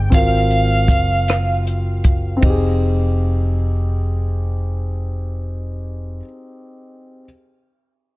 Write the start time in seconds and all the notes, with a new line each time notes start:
Already playing: G#4
0.10 G#1 C4 F4, kick, closed hi-hat
0.14 F#4 A#4 F5
0.50 closed hi-hat
0.88 F#1, kick, closed hi-hat
1.28 cross-stick, closed hi-hat
1.67 closed hi-hat
2.04 kick, closed hi-hat
2.37 C4
2.41 F1 D#4, kick, ride
2.45 G4
2.50 G#4